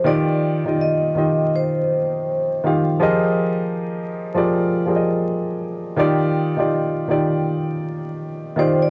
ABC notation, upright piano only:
X:1
M:4/4
L:1/16
Q:"Swing 16ths" 1/4=81
K:Eb
V:1 name="Upright piano"
[E,EFGd]2 z [E,EFGe]2 z [E,EFGe]6 z2 [E,EFGf]2 | [F,FGABe]6 z [F,FGABd]2 z [F,FGABde]4- [F,FGABde] z | [E,EFGd]2 z [E,EFGd]2 z [E,EFGd]6 z2 [E,EFGd]2 |]